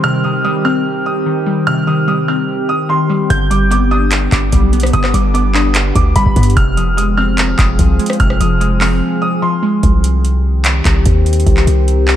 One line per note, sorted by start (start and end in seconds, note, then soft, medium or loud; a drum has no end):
0.00 1.06 C3 loud
0.00 0.23 D#3 medium
0.00 3.26 D#3 medium
0.00 0.43 G3 medium
0.00 3.26 C4 medium
0.00 6.53 G4 medium
0.00 0.21 F6 loud
0.24 1.25 D#3 medium
0.24 0.41 D#6 medium
0.44 1.45 G3 medium
0.44 0.61 D#6 medium
0.65 1.67 C4 medium
0.65 0.82 F6 medium
1.06 1.63 D#6 medium
1.26 1.86 D#3 medium
1.47 2.06 G3 medium
1.67 2.69 C3 medium
1.67 1.84 F6 loud
1.87 2.88 D#3 medium
1.87 2.04 D#6 medium
2.07 3.08 G3 medium
2.07 2.25 D#6 medium
2.28 3.30 C4 medium
2.28 2.45 F6 medium
2.69 2.86 D#6 medium
2.89 3.30 D#3 medium
2.89 3.28 C6 medium
3.10 3.30 G3 medium
3.30 4.28 G1 loud
3.30 4.32 D3 medium
3.30 6.53 D3 medium
3.30 6.53 B3 medium
3.30 3.47 G6 loud
3.30 kick loud
3.30 closed hi-hat medium
3.50 4.51 G3 medium
3.50 3.67 D6 medium
3.50 closed hi-hat medium
3.71 4.72 B3 medium
3.71 3.88 D6 medium
3.71 closed hi-hat medium
3.91 4.93 D4 medium
3.91 4.08 D#6 medium
4.11 clap loud
4.11 closed hi-hat medium
4.32 4.52 G1 loud
4.32 4.90 D6 medium
4.32 kick loud
4.32 clap loud
4.32 closed hi-hat medium
4.52 4.92 B1 loud
4.52 5.13 G3 medium
4.52 kick loud
4.52 closed hi-hat medium
4.73 5.33 B3 medium
4.73 closed hi-hat medium
4.80 cross-stick loud
4.80 closed hi-hat medium
4.87 closed hi-hat medium
4.93 5.13 G1 loud
4.93 5.95 D3 loud
4.93 5.10 D#6 loud
4.93 kick loud
4.93 closed hi-hat medium
5.04 cross-stick medium
5.04 clap medium
5.14 5.92 G1 loud
5.14 6.14 G3 medium
5.14 5.31 D6 medium
5.14 closed hi-hat medium
5.34 6.35 B3 medium
5.34 5.51 D6 medium
5.34 closed hi-hat medium
5.54 6.57 D4 medium
5.54 5.71 D#6 medium
5.54 clap medium
5.75 clap loud
5.75 closed hi-hat medium
5.95 6.15 D2 loud
5.95 6.12 D6 medium
5.95 kick loud
5.95 closed hi-hat medium
6.16 6.26 G1 loud
6.16 6.57 G3 medium
6.16 6.54 B5 loud
6.16 kick loud
6.16 closed hi-hat medium
6.26 6.36 G1 loud
6.26 kick medium
6.36 6.56 G2 loud
6.36 6.57 B3 medium
6.36 kick medium
6.36 closed hi-hat medium
6.36 open hi-hat medium
6.43 closed hi-hat medium
6.50 closed hi-hat medium
6.56 7.55 F1 loud
6.56 7.59 C3 loud
6.56 9.80 F3 medium
6.56 9.80 C4 medium
6.56 9.80 G#4 medium
6.56 6.74 F6 loud
6.56 kick loud
6.56 closed hi-hat medium
6.77 7.78 F3 medium
6.77 6.94 D#6 medium
6.77 closed hi-hat medium
6.97 7.98 G#3 medium
6.97 7.14 D#6 medium
6.97 closed hi-hat medium
7.17 8.20 C4 medium
7.17 7.34 F6 medium
7.38 clap loud
7.38 closed hi-hat medium
7.58 7.78 F1 loud
7.58 8.16 D#6 medium
7.58 kick loud
7.58 clap loud
7.58 closed hi-hat medium
7.79 7.99 C2 loud
7.79 8.39 F3 medium
7.79 kick loud
7.79 closed hi-hat medium
7.99 8.59 G#3 medium
7.99 closed hi-hat medium
8.06 cross-stick loud
8.06 closed hi-hat medium
8.13 closed hi-hat medium
8.20 8.39 F1 loud
8.20 9.22 C3 loud
8.20 8.37 F6 loud
8.20 kick loud
8.20 closed hi-hat medium
8.30 cross-stick medium
8.40 9.02 F1 loud
8.40 9.41 F3 medium
8.40 8.57 D#6 medium
8.40 closed hi-hat medium
8.61 9.61 G#3 medium
8.61 8.78 D#6 medium
8.61 closed hi-hat medium
8.81 9.83 C4 medium
8.81 8.98 F6 medium
8.81 clap medium
8.81 open hi-hat medium
9.22 9.39 D#6 medium
9.42 9.83 F3 medium
9.42 9.81 C6 medium
9.62 9.83 G#3 medium
9.83 10.81 C2 loud
9.83 12.16 D#3 medium
9.83 12.16 C4 medium
9.83 12.16 G4 medium
9.83 kick loud
9.83 closed hi-hat medium
10.04 closed hi-hat medium
10.25 closed hi-hat medium
10.64 clap loud
10.64 closed hi-hat medium
10.85 11.05 C2 loud
10.85 kick loud
10.85 clap loud
10.85 closed hi-hat medium
11.06 11.45 D#2 loud
11.06 kick loud
11.06 closed hi-hat medium
11.26 closed hi-hat medium
11.33 closed hi-hat medium
11.40 closed hi-hat medium
11.46 11.66 C2 loud
11.46 kick loud
11.46 closed hi-hat medium
11.57 clap medium
11.67 12.16 C2 loud
11.67 closed hi-hat medium
11.88 closed hi-hat medium
12.08 clap medium